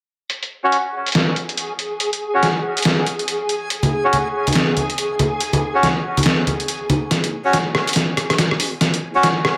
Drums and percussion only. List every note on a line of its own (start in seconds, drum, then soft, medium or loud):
0.30 closed hi-hat medium
0.43 closed hi-hat medium
0.72 closed hi-hat medium
1.06 closed hi-hat soft
1.06 closed hi-hat medium
1.12 snare loud
1.12 closed hi-hat medium
1.15 closed hi-hat medium
1.36 closed hi-hat medium
1.49 closed hi-hat soft
1.57 closed hi-hat medium
1.79 closed hi-hat medium
2.00 closed hi-hat medium
2.13 closed hi-hat medium
2.43 snare medium
2.43 closed hi-hat medium
2.77 closed hi-hat soft
2.77 closed hi-hat medium
2.82 snare loud
2.82 closed hi-hat medium
2.85 closed hi-hat medium
3.06 closed hi-hat medium
3.19 closed hi-hat soft
3.28 closed hi-hat medium
3.49 closed hi-hat medium
3.70 closed hi-hat medium
3.83 closed hi-hat medium
3.83 high conga medium
4.13 closed hi-hat medium
4.13 high conga medium
4.47 closed hi-hat soft
4.47 closed hi-hat medium
4.47 high conga medium
4.53 snare loud
4.53 closed hi-hat medium
4.55 closed hi-hat medium
4.77 closed hi-hat medium
4.77 high conga medium
4.90 closed hi-hat soft
4.98 closed hi-hat medium
5.19 closed hi-hat medium
5.19 high conga medium
5.40 closed hi-hat medium
5.53 closed hi-hat soft
5.53 high conga medium
5.83 snare medium
5.83 closed hi-hat medium
5.83 high conga medium
6.17 closed hi-hat soft
6.17 closed hi-hat medium
6.17 high conga medium
6.23 snare loud
6.23 closed hi-hat medium
6.26 closed hi-hat medium
6.47 closed hi-hat soft
6.47 high conga medium
6.60 closed hi-hat soft
6.68 closed hi-hat medium
6.89 closed hi-hat soft
6.89 high conga loud
7.11 kick medium
7.11 snare soft
7.11 closed hi-hat medium
7.24 closed hi-hat medium
7.53 kick loud
7.53 snare soft
7.53 closed hi-hat medium
7.75 cross-stick medium
7.87 closed hi-hat medium
7.93 snare medium
7.93 closed hi-hat medium
7.96 kick loud
7.96 closed hi-hat medium
8.17 cross-stick medium
8.17 closed hi-hat medium
8.30 cross-stick medium
8.30 closed hi-hat soft
8.38 kick medium
8.38 snare medium
8.38 closed hi-hat medium
8.51 cross-stick soft
8.60 open hi-hat medium
8.81 kick loud
8.81 snare medium
8.81 closed hi-hat medium
8.94 closed hi-hat medium
9.23 kick loud
9.23 snare medium
9.23 closed hi-hat medium
9.45 cross-stick medium